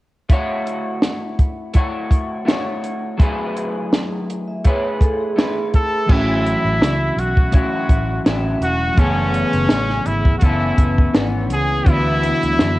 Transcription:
0.29 A3 E4 F#4 C#5, kick, closed hi-hat
0.67 closed hi-hat
1.02 snare, closed hi-hat
1.39 kick, closed hi-hat
1.73 A3 E4 F#4 C#5, kick, closed hi-hat
2.11 kick, closed hi-hat
2.45 A3 E4 F#4 C#5, snare, closed hi-hat
2.84 closed hi-hat
3.17 F#3 A3 E4 G#4, kick, closed hi-hat
3.22 B4
3.56 closed hi-hat
3.93 snare, closed hi-hat
4.30 closed hi-hat
4.48 E5
4.64 A3 E4 G#4 B4 C#5, kick, closed hi-hat
4.85 B4
5.00 A4, kick, closed hi-hat
5.20 G#4
5.36 A3 E4 B4, snare, closed hi-hat
5.74 A4, kick, closed hi-hat
6.06 A1 A2 E3 F#3 A3 C#4, kick, crash
6.11 E4 F#4
6.46 closed hi-hat
6.65 A1
6.81 C#2, snare, closed hi-hat
7.17 B1 F#4, closed hi-hat
7.37 kick
7.51 A2 F#3 C#4 E4, kick, closed hi-hat
7.56 F#4
7.89 A1, kick, closed hi-hat
8.25 A1 A2 F#3 C#4 E4, snare, closed hi-hat
8.61 E1 F#4, closed hi-hat
8.95 F#1 F#2 C#3 E3 A3 B3, kick, closed hi-hat
8.99 B3 C#4 G#4 A4
9.34 closed hi-hat
9.53 F#1, closed hi-hat
9.69 A1, snare, closed hi-hat
9.90 snare
10.06 G#1 E4, closed hi-hat
10.25 kick
10.38 F#1 E3 F#4, kick, closed hi-hat
10.44 B3 C#4 E4 A4
10.78 F#1, kick, closed hi-hat
10.98 kick
11.14 G#1 E3 B3 C#4, snare, closed hi-hat
11.50 C#2 G#4, closed hi-hat
11.84 D2 D3 E3 F#3 B3 D4, kick, closed hi-hat
11.89 E4 F#4
12.23 closed hi-hat
12.43 D2, closed hi-hat
12.59 F#2, snare, closed hi-hat

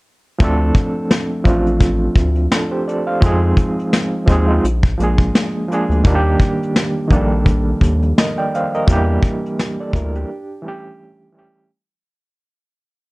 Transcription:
0.38 D2 F3 A3 C4, kick, closed hi-hat
0.43 D4 A4
0.75 kick, closed hi-hat
1.11 snare, closed hi-hat
1.44 A1 F3 A3 C4 D4, kick, closed hi-hat
1.50 F4
1.66 closed hi-hat
1.81 kick, closed hi-hat
2.16 D2, kick, closed hi-hat
2.36 closed hi-hat
2.52 D4 A4, snare, closed hi-hat
2.71 G4 C5
2.88 A4 D5, closed hi-hat
3.07 C5 F5
3.21 F2 F3 G#3 C4 D#4, kick, closed hi-hat
3.26 G#4
3.57 kick, closed hi-hat
3.79 closed hi-hat
3.93 snare, closed hi-hat
4.26 D#2 F3 G#3 C4, kick, closed hi-hat
4.30 D#4 G#4
4.47 F3 G#3 C4 D#4
4.53 F4
4.64 A#1, closed hi-hat
4.83 kick
4.97 A#1 F3 G#3 A#3, closed hi-hat
5.02 D4 G#4
5.18 kick
5.35 snare, closed hi-hat
5.69 F3 G#3 A#3, closed hi-hat
5.73 D4 G#4
5.89 D2, closed hi-hat
6.04 D#2 D#3 G3 A#3 D4, kick, closed hi-hat
6.09 F4
6.15 G4
6.40 kick, closed hi-hat
6.63 closed hi-hat
6.76 snare, closed hi-hat
7.08 A#1 D#3 F3 A#3, kick
7.12 G3 D4 A4, closed hi-hat
7.46 kick, closed hi-hat
7.81 D#2, kick, closed hi-hat
8.02 closed hi-hat
8.18 A#4 D#5, snare, closed hi-hat
8.38 D5 G5
8.55 C5 F5, closed hi-hat
8.74 A#4 D#5, closed hi-hat
8.87 E2 E3 G3 A#3, kick, closed hi-hat
8.92 D4 G4
9.23 kick, closed hi-hat
9.46 closed hi-hat
9.59 snare, closed hi-hat
9.80 A4 D5
9.93 D2 E4 A#4, kick, closed hi-hat
10.15 D4 G4, closed hi-hat
10.62 E3 G3 A3
10.67 C#4 G4
11.33 E3 G3 A3
11.37 C#4 G4

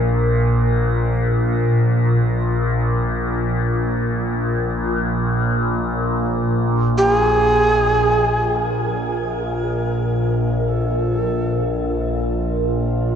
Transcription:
Already playing: A#1 A#2 A#4
6.98 G4
7.15 G#4
8.56 A#2 A#4
8.60 A#1 A#2
8.90 F3
10.69 A4
11.32 D4
12.32 F4

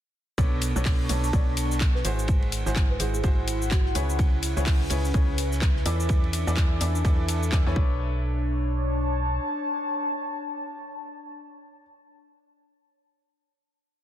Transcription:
0.38 B1 B2 D4 A4 B4 C#5, kick, ride, shaker
0.55 C#6
0.61 A5, open hi-hat, ride, shaker
0.76 B1 B2 D4 A4 B4 C#5, shaker
0.85 kick, snare, clap, open hi-hat, shaker
1.09 B1 B2 D4 A4 B4 C#5, open hi-hat, ride, shaker
1.24 shaker
1.33 B1 B2 D4 A4 B4 C#5 D5, kick, ride, shaker
1.57 open hi-hat, ride, shaker
1.71 snare, shaker
1.80 kick, snare, clap, ride, shaker
1.95 B4, snare
2.05 G#1 G#3 E4 F#4 G#4 C5, open hi-hat, ride, shaker
2.19 shaker
2.28 E4, kick, ride, shaker
2.42 ride
2.52 C5, open hi-hat, ride, shaker
2.64 G#1 G#3 E4 F#4 G#4 C5 F#5, snare, shaker
2.76 kick, snare, clap, ride, shaker
2.90 B4
3.00 G#1 G#3 E4 F#4 G#4 C5, open hi-hat, ride, shaker
3.14 G#4, shaker
3.24 G#1 G#3 E4 F#4 G#4 C5, kick, ride, shaker
3.48 open hi-hat, ride, shaker
3.62 shaker
3.71 F#4, kick, snare, clap, ride, shaker
3.86 snare
3.95 C#2 C#3 E4 G#4 B4 C#5, open hi-hat, ride, shaker
4.10 shaker
4.19 C#4, kick, ride, shaker
4.41 B4, open hi-hat, ride, shaker
4.57 C#2 C#3 E4 G#4 B4 C#5, shaker
4.66 kick, snare, clap, open hi-hat, shaker
4.90 C#2 C#3 E4 G#4 B4 C#5, open hi-hat, ride, shaker
5.05 E5, shaker
5.14 C#2 C#3 E4 G#4 B4 C#5, kick, ride, shaker
5.38 open hi-hat, ride, shaker
5.52 snare, shaker
5.61 kick, snare, clap, ride, shaker
5.76 snare
5.86 E2 E3 E4 A4 B4 D5, open hi-hat, ride, shaker
6.00 shaker
6.09 D4, kick, ride, shaker
6.24 ride
6.33 A4, open hi-hat, ride, shaker
6.47 E2 E3 E4 A4 B4 D5, snare, shaker
6.57 kick, snare, clap, ride, shaker
6.81 E2 E3 E4 A4 B4 D5, open hi-hat, ride, shaker
6.95 shaker
7.05 E2 E3 E4 A4 B4 D5, kick, ride, shaker
7.29 open hi-hat, ride, shaker
7.43 shaker
7.52 E2 E3 E4 A4 B4 D5, kick, snare, clap, ride, shaker
7.66 E2 E3 E4 A4 B4 C#5, snare
7.76 B1 D4 A4 B4 C#5, kick
7.85 C#5
8.16 A5

